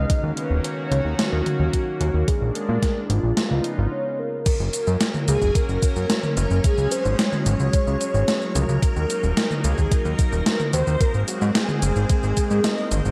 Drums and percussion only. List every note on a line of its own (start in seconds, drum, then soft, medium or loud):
0.10 kick loud
0.10 closed hi-hat medium
0.37 closed hi-hat medium
0.64 closed hi-hat medium
0.92 closed hi-hat medium
1.19 snare loud
1.19 closed hi-hat medium
1.46 closed hi-hat medium
1.46 mid tom medium
1.73 kick medium
1.73 closed hi-hat medium
2.01 closed hi-hat medium
2.28 kick loud
2.28 closed hi-hat medium
2.55 closed hi-hat medium
2.82 kick loud
2.82 snare medium
2.82 closed hi-hat medium
3.10 closed hi-hat medium
3.37 snare loud
3.37 closed hi-hat medium
3.64 closed hi-hat medium
4.46 kick loud
4.46 closed hi-hat loud
4.46 crash loud
4.46 shaker soft
4.60 shaker soft
4.73 closed hi-hat medium
4.73 shaker medium
4.87 shaker soft
5.01 snare loud
5.01 closed hi-hat medium
5.01 shaker soft
5.14 mid tom medium
5.14 shaker soft
5.28 closed hi-hat medium
5.28 shaker medium
5.42 kick medium
5.42 shaker soft
5.55 kick loud
5.55 closed hi-hat loud
5.55 shaker soft
5.69 shaker soft
5.83 kick loud
5.83 closed hi-hat medium
5.83 shaker medium
5.96 shaker soft
6.10 snare loud
6.10 closed hi-hat loud
6.10 shaker soft
6.23 mid tom medium
6.23 shaker soft
6.37 closed hi-hat medium
6.37 shaker medium
6.51 shaker soft
6.64 kick loud
6.64 closed hi-hat medium
6.64 shaker soft
6.78 shaker soft
6.92 closed hi-hat medium
6.92 shaker medium
7.05 shaker soft
7.19 snare loud
7.19 closed hi-hat loud
7.19 shaker soft
7.33 mid tom medium
7.33 shaker soft
7.46 closed hi-hat medium
7.46 shaker medium
7.60 shaker soft
7.73 kick loud
7.73 closed hi-hat loud
7.73 shaker soft
7.87 shaker soft
8.01 closed hi-hat medium
8.01 shaker medium
8.14 shaker soft
8.28 snare loud
8.28 closed hi-hat medium
8.28 shaker soft
8.42 shaker soft
8.55 closed hi-hat medium
8.55 mid tom medium
8.55 shaker medium
8.69 shaker soft
8.82 kick loud
8.82 closed hi-hat loud
8.82 shaker soft
8.96 shaker soft
9.10 closed hi-hat medium
9.10 shaker medium
9.23 shaker soft
9.37 snare loud
9.37 closed hi-hat loud
9.37 shaker soft
9.51 mid tom medium
9.51 shaker soft
9.64 closed hi-hat medium
9.64 shaker medium
9.78 kick medium
9.78 shaker soft
9.92 kick loud
9.92 closed hi-hat loud
9.92 shaker soft
10.05 shaker soft
10.19 kick loud
10.19 closed hi-hat medium
10.19 shaker medium
10.33 shaker soft
10.46 snare loud
10.46 closed hi-hat medium
10.46 shaker soft
10.60 mid tom medium
10.60 shaker soft
10.73 closed hi-hat medium
10.73 shaker medium
10.87 shaker soft
11.01 kick loud
11.01 closed hi-hat medium
11.01 shaker soft
11.14 shaker soft
11.28 closed hi-hat medium
11.28 shaker medium
11.41 shaker soft
11.55 snare loud
11.55 closed hi-hat medium
11.55 shaker soft
11.69 mid tom medium
11.69 shaker soft
11.82 closed hi-hat medium
11.82 shaker medium
11.96 shaker soft
12.10 kick loud
12.10 closed hi-hat loud
12.10 shaker soft
12.23 shaker soft
12.37 kick medium
12.37 closed hi-hat medium
12.37 shaker medium
12.51 shaker soft
12.64 snare loud
12.64 closed hi-hat medium
12.64 shaker soft
12.78 shaker soft
12.91 closed hi-hat medium
12.91 mid tom medium
12.91 shaker medium
13.05 shaker soft